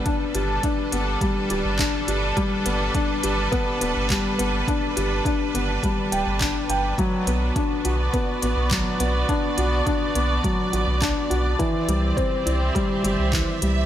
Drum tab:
HH |xxxxxxxx|xxxxxxxx|xxxxxxxx|xxxxxxxx|
CP |------x-|------x-|------x-|------x-|
BD |o-o-o-o-|o-o-o-o-|o-o-o-o-|o-o-o-o-|

HH |xxxxxxxx|xxxxxxxx|
CP |------x-|------x-|
BD |o-o-o-o-|o-o-o-o-|